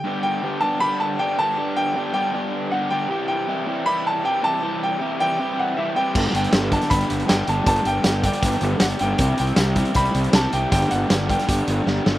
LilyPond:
<<
  \new Staff \with { instrumentName = "Upright piano" } { \time 4/4 \key g \major \tempo 4 = 157 g''8 g''4 a''8 b''8 a''8 g''8 a''8~ | a''8 g''4 g''4. fis''8 g''8~ | g''8 g''4. b''8 a''8 g''8 a''8~ | a''8 g''4 g''4 fis''8 e''8 g''8~ |
g''8 g''4 a''8 b''4 g''8 a''8 | a''8 g''4 g''4. fis''8 g''8~ | g''8 g''4. b''4 a''8 g''8 | g''8 fis''4 g''2 r8 | }
  \new Staff \with { instrumentName = "Overdriven electric guitar" } { \clef bass \time 4/4 \key g \major <g, d g b d' g'>4 <g, d g b d' g'>8 <g, d g b d' g'>8 <g, d g b d' g'>4 <g, d g b d' g'>8 <g, d g b d' g'>8 | <g, d g b d' g'>4 <g, d g b d' g'>8 <g, d g b d' g'>8 <g, d g b d' g'>4 <g, d g b d' g'>8 <g, d g b d' g'>8 | <c e g e' g'>4 <c e g e' g'>8 <c e g e' g'>8 <c e g e' g'>4 <c e g e' g'>8 <c e g e' g'>8 | <c e g e' g'>4 <c e g e' g'>8 <c e g e' g'>8 <c e g e' g'>4 <c e g e' g'>8 <c e g e' g'>8 |
<g, d g b d' g'>4 <g, d g b d' g'>8 <g, d g b d' g'>8 <g, d g b d' g'>4 <g, d g b d' g'>8 <g, d g b d' g'>8 | <g, d g b d' g'>4 <g, d g b d' g'>8 <g, d g b d' g'>8 <g, d g b d' g'>4 <g, d g b d' g'>8 <g, d g b d' g'>8 | <c g c' e' g'>4 <c g c' e' g'>8 <c g c' e' g'>8 <c g c' e' g'>4 <c g c' e' g'>8 <c g c' e' g'>8 | <g, d g b d' g'>4 <g, d g b d' g'>8 <g, d g b d' g'>8 <g, d g b d' g'>4 <g, d g b d' g'>8 <g, d g b d' g'>8 | }
  \new Staff \with { instrumentName = "Fingered electric bass" } { \clef bass \time 4/4 \key g \major r1 | r1 | r1 | r1 |
g,,8 g,,8 g,,4 g,,8 g,,8 g,,8 g,,8 | g,,8 g,,8 g,,4 g,,8 g,,8 g,,8 g,,8 | c,8 c,8 c,4 c,8 c,8 c,8 c,8 | g,,8 g,,8 g,,4 g,,8 g,,8 g,,8 g,,8 | }
  \new DrumStaff \with { instrumentName = "Drums" } \drummode { \time 4/4 r4 r4 r4 r4 | r4 r4 r4 r4 | r4 r4 r4 r4 | r4 r4 r4 r4 |
<cymc bd>8 hh16 hh16 <hh sn>8 <hh bd>16 <hh sn>16 <hh bd>16 hh16 hh16 hh16 <hh sn>8 hh8 | <hh bd>16 hh16 hh8 <hh sn>8 <hh bd>16 hh16 <hh bd>8 hh8 <hh sn>16 hh16 hh8 | <hh bd>8 hh16 hh16 <hh sn>8 <hh bd>16 hh16 <hh bd>16 hh16 hh16 hh16 <hh sn>8 hh8 | <hh bd>16 hh16 hh8 <hh sn>8 <hh bd>16 <hh sn>16 <hh bd>8 hh8 sn8 sn8 | }
>>